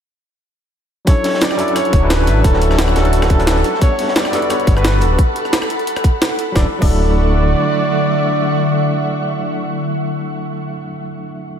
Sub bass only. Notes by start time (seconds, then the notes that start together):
1.93 D1
2.27 A1
2.44 D1
2.96 D1
4.67 G1
5.02 D1
6.55 D1
6.82 D1